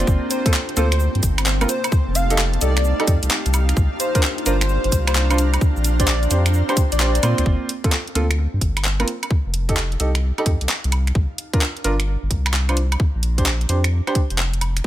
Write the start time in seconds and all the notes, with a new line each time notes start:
Already playing: A#3 C4 D4 F4 C5 G5
0.07 G1 A#3 C4 A4, kick, cabasa
0.27 A#3 C5, open hi-hat, cabasa
0.46 A#3 C4 F4 A4 C5, kick, closed hi-hat, cabasa
0.54 clap, cabasa
0.69 closed hi-hat
0.77 D2 A#3 C4 F4 A4 C5 A5, open hi-hat, cabasa
0.81 F5
0.92 C5, finger snap, closed hi-hat, cabasa
1.00 cabasa
1.15 G2, closed hi-hat
1.23 G1, kick, open hi-hat, cabasa
1.38 finger snap, closed hi-hat, cabasa, high woodblock
1.46 clap, cabasa
1.61 A#3 C4 F4 A#4, closed hi-hat, cabasa, high woodblock
1.69 A3 D#4 G4 C5, open hi-hat, cabasa
1.84 C5, closed hi-hat, cabasa, high woodblock
1.91 G4, kick, cabasa
2.07 F1
2.15 F5, open hi-hat, cabasa
2.30 D#4 G4 A4 F5, closed hi-hat, cabasa
2.38 clap, cabasa
2.54 closed hi-hat
2.61 C2 D#4 G4 A4 D5, open hi-hat, cabasa
2.77 finger snap, closed hi-hat, cabasa
2.84 cabasa
3.00 D#4 G4 A4, closed hi-hat, high woodblock
3.07 F2, kick, open hi-hat, cabasa
3.23 C2, closed hi-hat, cabasa
3.31 clap, cabasa
3.46 C2, closed hi-hat, cabasa
3.54 A#3 D4 F4 G4, open hi-hat, cabasa, high woodblock
3.69 finger snap, closed hi-hat, cabasa
3.77 C2, kick, cabasa
3.89 A#5
3.96 C5, open hi-hat, cabasa
4.15 D4 F4 A#4 C5, kick, closed hi-hat, cabasa
4.23 clap, cabasa
4.38 closed hi-hat
4.46 G1 D4 F4 A#4 C5, open hi-hat, cabasa
4.61 C5, finger snap, closed hi-hat, cabasa
4.69 C5, cabasa
4.84 G1 C5, closed hi-hat
4.92 C2, kick, open hi-hat, cabasa
5.07 C5, finger snap, closed hi-hat, cabasa, high woodblock
5.15 clap, cabasa
5.30 D4 F4 C5, closed hi-hat, cabasa, high woodblock
5.38 open hi-hat, cabasa
5.54 closed hi-hat, cabasa, high woodblock
5.61 C4 D4, kick, cabasa
5.77 A#1, cabasa
5.84 open hi-hat, cabasa
6.00 D4 G4 C5 D5, kick, closed hi-hat, cabasa
6.08 D5, clap, cabasa
6.23 closed hi-hat, cabasa
6.31 F2 D4 G4 C5 G5, open hi-hat, cabasa
6.46 finger snap, closed hi-hat, cabasa
6.54 cabasa
6.69 D4 G4 C5, closed hi-hat, cabasa, high woodblock
6.77 kick, open hi-hat, cabasa
6.92 A#1 D5, closed hi-hat, cabasa
7.00 D4 G4 C5, clap, cabasa
7.15 closed hi-hat, cabasa
7.23 A#2 A#3 C4 F4 C5, open hi-hat, cabasa, high woodblock
7.38 D2, finger snap, closed hi-hat, cabasa
7.46 G1 C4, kick
7.69 A#4, open hi-hat
7.84 A#3 C4 F4 A4, kick, closed hi-hat
7.90 F5, clap
8.07 closed hi-hat
8.15 D2 A#3 C4 F4 A4, open hi-hat
8.20 A5
8.31 finger snap, closed hi-hat
8.54 G2
8.61 G1, kick, open hi-hat
8.77 finger snap, closed hi-hat, high woodblock
8.84 clap
9.00 A#3 C4 F4 A#4, closed hi-hat, high woodblock
9.08 D#4, open hi-hat
9.23 closed hi-hat, high woodblock
9.31 kick
9.46 F1 G4
9.54 open hi-hat
9.69 D#4 G4 A4, kick, closed hi-hat
9.77 clap
9.92 closed hi-hat
10.00 C2 D#4 G4 A4, open hi-hat
10.15 finger snap, closed hi-hat
10.38 D#4 G4 A4, closed hi-hat, high woodblock
10.46 F2, kick, open hi-hat
10.61 C2, open hi-hat
10.69 clap
10.84 C2, closed hi-hat
10.92 D4, open hi-hat, high woodblock
11.07 finger snap, closed hi-hat
11.15 C2, kick
11.31 C5
11.38 open hi-hat
11.53 D4 F4 A#4, kick, closed hi-hat
11.61 clap
11.73 A#5, closed hi-hat
11.84 G1 D4 F4 A#4, open hi-hat
12.00 finger snap, closed hi-hat
12.23 G1
12.31 C2, kick, open hi-hat
12.46 finger snap, closed hi-hat, high woodblock
12.54 clap
12.69 D4 F4 C5, closed hi-hat, high woodblock
12.77 open hi-hat
12.92 closed hi-hat, high woodblock
13.00 kick
13.15 A#1
13.23 open hi-hat
13.38 D4 G4 C5, kick, closed hi-hat
13.46 clap
13.61 closed hi-hat
13.69 F2 D4 G4 C5 G5, open hi-hat
13.84 finger snap, closed hi-hat
14.07 D4 G4 C5, closed hi-hat, high woodblock
14.15 kick, open hi-hat
14.30 F1, open hi-hat
14.38 clap
14.54 closed hi-hat
14.61 open hi-hat, high woodblock
14.77 finger snap, closed hi-hat